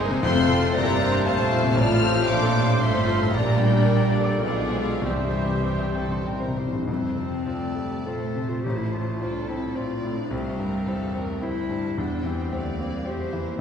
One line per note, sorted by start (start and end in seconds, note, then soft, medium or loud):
0.00 0.23 G1 medium
0.00 0.27 C2 medium
0.00 0.24 G2 medium
0.00 0.11 C3 medium
0.00 0.26 G#3 medium
0.00 0.24 A#3 medium
0.00 0.23 D#4 medium
0.00 0.27 G#4 medium
0.00 0.24 A#4 medium
0.00 0.27 C5 medium
0.00 0.73 C5 medium
0.00 1.50 C5 medium
0.00 0.27 G#5 medium
0.00 0.27 C6 medium
0.11 0.24 C3 medium
0.21 0.74 F1 medium
0.21 0.73 F2 medium
0.21 0.75 F2 medium
0.21 0.98 F2 loud
0.21 3.30 A3 medium
0.21 0.49 A3 medium
0.21 0.71 C4 loud
0.21 0.75 F4 medium
0.21 0.75 A4 medium
0.21 0.53 C5 medium
0.21 0.72 C6 loud
0.25 0.73 F5 loud
0.35 0.57 C3 medium
0.48 0.70 A3 medium
0.48 0.75 A3 medium
0.48 0.79 A4 medium
0.60 0.82 F4 medium
0.73 1.26 G1 medium
0.73 1.26 G2 medium
0.73 1.78 G3 medium
0.73 1.27 A#3 medium
0.73 1.01 E4 medium
0.73 1.26 G4 medium
0.73 0.95 C5 medium
0.73 1.24 C5 medium
0.73 1.27 D5 loud
0.73 1.27 A#5 loud
0.77 1.04 D5 medium
0.84 1.07 A4 medium
1.00 1.27 D4 medium
1.00 1.30 C5 medium
1.00 1.21 F5 medium
1.12 1.33 C6 medium
1.25 1.77 A#1 medium
1.25 1.77 A#2 medium
1.25 1.78 A3 medium
1.25 1.77 C4 medium
1.25 1.52 F4 medium
1.25 1.76 C5 medium
1.25 1.78 C5 medium
1.25 1.47 F5 medium
1.25 1.61 F5 medium
1.25 1.76 A5 loud
1.40 1.60 C5 medium
1.52 1.78 E4 medium
1.52 1.73 F4 medium
1.63 1.77 C3 medium
1.75 2.27 A1 medium
1.75 2.29 A1 medium
1.75 2.30 A2 medium
1.75 2.80 C4 medium
1.75 2.29 F4 loud
1.75 2.80 C5 medium
1.75 2.29 A5 loud
1.75 2.29 F6 loud
1.79 2.29 F3 medium
1.79 2.04 F4 medium
1.79 3.31 C5 medium
1.79 2.07 D5 medium
1.88 2.10 A2 medium
2.02 2.23 A3 medium
2.02 2.30 G4 medium
2.02 2.84 C5 medium
2.15 2.37 F4 medium
2.28 2.81 A#1 medium
2.28 2.81 A#2 medium
2.28 2.56 F3 medium
2.28 2.81 D4 loud
2.28 2.81 A4 medium
2.28 2.51 C5 medium
2.28 2.81 F5 medium
2.28 2.81 D6 loud
2.43 2.64 A4 medium
2.57 2.82 G3 medium
2.57 2.78 F5 medium
2.70 2.90 C6 medium
2.80 3.33 G1 medium
2.80 3.33 G2 medium
2.80 3.34 A3 medium
2.80 3.34 C4 medium
2.80 3.35 F4 medium
2.80 3.33 A4 medium
2.80 3.33 C5 medium
2.80 3.36 E5 medium
2.80 3.02 F5 medium
2.80 3.34 F5 medium
2.80 3.33 C6 medium
2.94 3.15 C5 medium
3.05 3.27 F4 medium
3.19 3.33 A2 medium
3.31 4.39 A#1 medium
3.31 4.40 A#1 medium
3.31 3.60 D5 medium
3.31 3.60 A#5 loud
3.35 4.40 A#2 medium
3.35 4.40 G3 medium
3.35 4.42 G3 medium
3.35 3.61 A#3 medium
3.35 4.40 D4 medium
3.35 4.40 A#4 medium
3.35 4.44 D5 medium
3.35 5.02 D5 medium
3.46 3.68 A#2 medium
3.57 3.80 G3 medium
3.57 4.15 G3 medium
3.57 4.14 G5 medium
3.62 4.16 A#4 medium
3.71 3.94 D4 medium
3.82 4.07 D5 medium
3.97 4.21 G4 medium
4.11 4.36 D5 medium
4.11 4.22 F5 medium
4.16 5.06 F3 medium
4.16 5.05 A4 medium
4.24 4.31 G5 medium
4.24 4.41 D6 medium
4.30 4.38 F5 medium
4.37 5.01 B1 medium
4.37 4.46 G5 medium
4.43 5.05 B1 medium
4.43 5.05 B2 medium
4.43 5.04 G#3 medium
4.43 5.04 B3 medium
4.43 5.03 D4 medium
4.43 5.05 F4 medium
4.43 5.04 G#4 medium
4.43 4.75 B4 medium
4.48 4.56 F5 medium
4.55 4.82 B2 soft
4.55 4.64 G5 medium
4.64 4.73 F5 medium
4.71 4.97 G#3 medium
4.71 5.05 D5 medium
4.71 4.80 G5 medium
4.81 5.05 F5 medium
4.88 5.04 F4 medium
5.02 6.83 C2 medium
5.02 6.67 C3 medium
5.02 6.67 G3 medium
5.02 6.54 G3 medium
5.02 6.67 C4 medium
5.02 6.26 G4 medium
5.02 5.60 G4 medium
5.02 6.54 C5 medium
5.02 6.26 E5 medium
5.06 6.68 C2 medium
5.06 6.25 E3 medium
5.06 6.55 C5 medium
5.13 5.42 G2 soft
5.13 5.20 C3 soft
5.30 5.37 C3 soft
5.30 5.59 G3 soft
5.38 5.45 C3 soft
5.46 5.53 C3 soft
5.46 5.74 G4 soft
5.54 5.60 C3 soft
5.61 5.67 C3 soft
5.61 5.89 C5 soft
5.66 5.76 C3 soft
5.66 5.94 G4 medium
5.80 6.05 G4 soft
5.85 5.91 C3 soft
5.93 5.99 C3 soft
5.93 6.25 A4 medium
5.93 6.19 G5 soft
6.00 6.07 C3 medium
6.08 6.15 C3 medium
6.12 6.36 C6 soft
6.17 6.23 C3 medium
6.25 6.31 C3 medium
6.25 6.57 A#4 medium
6.25 6.51 G5 soft
6.33 6.39 C3 medium
6.40 6.47 C3 medium
6.40 6.66 C5 soft
6.48 6.56 C3 medium
6.57 6.64 C3 medium
6.57 6.82 G4 soft
6.57 6.88 C5 medium
6.65 6.71 C3 medium
6.72 6.88 G2 soft
6.72 6.79 C3 medium
6.80 6.87 C3 medium
6.86 7.44 F2 medium
6.86 7.43 F2 medium
6.86 7.15 A3 soft
6.86 8.01 C4 medium
6.86 7.43 C5 soft
6.86 8.61 A5 medium
7.16 7.46 C3 soft
7.16 7.46 F3 soft
7.45 8.06 D2 soft
7.45 7.74 F3 soft
7.45 7.76 A3 soft
7.45 7.74 F4 soft
7.45 7.73 C5 soft
7.45 8.08 D5 soft
7.75 8.06 G3 medium
7.75 8.24 A3 soft
7.75 8.05 A3 medium
8.06 8.63 A#1 medium
8.06 9.18 F3 soft
8.06 9.18 A3 medium
8.06 8.33 F4 soft
8.06 8.51 A4 medium
8.06 8.63 C5 medium
8.06 8.33 C5 soft
8.35 8.64 C3 soft
8.49 8.65 F4 medium
8.63 9.20 A1 medium
8.63 9.74 A1 medium
8.63 8.79 G4 medium
8.63 9.19 C5 soft
8.63 9.74 A5 medium
8.77 8.93 E4 medium
8.92 9.38 A2 soft
8.92 9.49 F4 medium
9.19 9.76 C2 medium
9.19 10.31 A3 soft
9.19 9.49 D4 medium
9.19 9.46 F4 soft
9.19 9.75 A4 soft
9.19 9.47 C5 soft
9.48 10.32 C4 soft
9.48 9.93 C4 soft
9.48 9.78 E4 medium
9.75 10.32 A#1 medium
9.75 10.01 F4 soft
9.75 10.20 F4 medium
9.75 10.01 C5 soft
9.75 10.32 D5 medium
9.75 11.42 F5 soft
10.03 10.32 A2 soft
10.18 10.33 D4 medium
10.31 11.38 C2 medium
10.31 10.87 C2 medium
10.31 11.97 G3 soft
10.31 10.60 A3 medium
10.31 11.41 C4 medium
10.31 10.60 C5 medium
10.58 11.04 G2 soft
10.58 10.88 G3 soft
10.58 10.88 A#4 medium
10.88 11.42 E2 soft
10.88 11.16 E3 soft
10.88 11.13 E4 soft
10.88 11.16 A4 medium
10.88 11.13 C5 soft
11.15 11.43 A3 soft
11.15 11.59 C4 soft
11.15 11.43 A#4 medium
11.41 11.97 D2 medium
11.41 11.98 G3 soft
11.41 12.00 E4 medium
11.41 11.67 E4 soft
11.41 11.68 C5 soft
11.41 11.98 C5 medium
11.41 11.69 G5 medium
11.69 11.98 G2 soft
11.69 11.98 A5 medium
11.97 12.51 E2 medium
11.97 12.53 E2 medium
11.97 12.52 G3 medium
11.97 12.25 D4 medium
11.97 12.53 C5 medium
11.97 12.51 G5 medium
12.23 12.70 E3 soft
12.23 12.82 C4 medium
12.52 13.08 D2 medium
12.52 12.80 A3 medium
12.52 12.81 A3 medium
12.52 12.77 G4 soft
12.52 12.78 C5 soft
12.52 13.08 D5 medium
12.52 13.08 F5 medium
12.79 13.09 G3 medium
12.79 13.08 A#3 medium
12.79 13.09 A#3 medium
12.79 13.24 C4 soft
13.05 13.35 A3 medium
13.05 13.61 C4 medium
13.05 13.31 G4 soft
13.05 13.43 G4 medium
13.05 13.31 C5 soft
13.05 13.61 E5 soft
13.10 13.61 F2 medium
13.10 13.61 C5 medium
13.33 13.60 E3 medium
13.33 13.61 A#3 medium